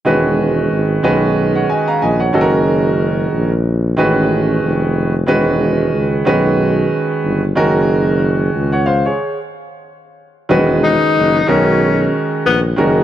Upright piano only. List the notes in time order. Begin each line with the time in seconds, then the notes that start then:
0.05 D#3 G#3 C#4 F#4 B4
1.03 D#3 G#3 C#4 F#4 B4
1.55 C#5 F#5
1.69 D#5 G#5
1.88 F5 A#5
2.02 D#5 G#5
2.20 C#5 F#5
2.33 D#3 G#3 C#4 F#4 A4
2.41 A#4
3.97 D#3 G#3 C#4 F#4 B4
5.26 D#3 G#3 C#4 F#4 B4
6.25 D#3 G#3 C#4 F#4 B4
7.55 D#3 G#3 C#4 F#4 A#4
8.72 C#5 F#5
8.86 C5 F5
9.06 G#4 C#5
10.49 D#3 F#3 C#4 F#4 B4
10.56 G#3
11.46 D#3 G#3 C#4 F#4 A#4
12.76 D#3 G#3 C#4 F#4 A#4